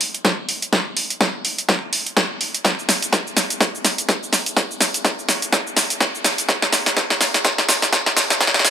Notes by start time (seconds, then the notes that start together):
0.01 open hi-hat
0.14 closed hi-hat
0.25 kick, snare, closed hi-hat
0.49 open hi-hat
0.62 closed hi-hat
0.73 kick, snare, closed hi-hat
0.97 open hi-hat
1.10 closed hi-hat
1.21 kick, snare, closed hi-hat
1.45 open hi-hat
1.58 closed hi-hat
1.69 kick, snare, closed hi-hat
1.93 open hi-hat
2.06 closed hi-hat
2.17 kick, snare, closed hi-hat
2.41 open hi-hat
2.54 closed hi-hat
2.65 kick, snare, closed hi-hat, shaker
2.79 shaker
2.89 snare, open hi-hat, shaker
3.02 closed hi-hat, shaker
3.13 kick, snare, closed hi-hat, shaker
3.27 shaker
3.37 snare, open hi-hat, shaker
3.50 closed hi-hat, shaker
3.61 kick, snare, closed hi-hat, shaker
3.75 shaker
3.85 snare, open hi-hat, shaker
3.98 closed hi-hat, shaker
4.09 kick, snare, closed hi-hat, shaker
4.23 shaker
4.33 snare, open hi-hat, shaker
4.46 closed hi-hat, shaker
4.57 kick, snare, closed hi-hat, shaker
4.71 shaker
4.81 snare, open hi-hat, shaker
4.94 closed hi-hat, shaker
5.05 kick, snare, closed hi-hat, shaker
5.19 shaker
5.29 snare, open hi-hat, shaker
5.42 closed hi-hat, shaker
5.52 kick, snare, closed hi-hat, shaker
5.67 shaker
5.77 snare, open hi-hat, shaker
5.90 closed hi-hat, shaker
6.00 kick, snare, closed hi-hat, shaker
6.15 shaker
6.24 snare, open hi-hat, shaker
6.38 closed hi-hat, shaker
6.49 kick, snare, closed hi-hat, shaker
6.62 snare, shaker
6.73 snare, open hi-hat, shaker
6.86 snare, closed hi-hat, shaker
6.97 kick, snare, closed hi-hat, shaker
7.10 snare, shaker
7.21 snare, open hi-hat, shaker
7.34 snare, closed hi-hat, shaker
7.45 kick, snare, closed hi-hat, shaker
7.58 snare, shaker
7.69 snare, open hi-hat, shaker
7.82 snare, closed hi-hat, shaker
7.93 kick, snare, closed hi-hat, shaker
8.06 snare, shaker
8.17 snare, open hi-hat, shaker
8.30 snare, closed hi-hat, shaker
8.41 kick, snare, closed hi-hat, shaker
8.47 snare
8.54 snare, shaker
8.59 snare
8.65 snare, open hi-hat, shaker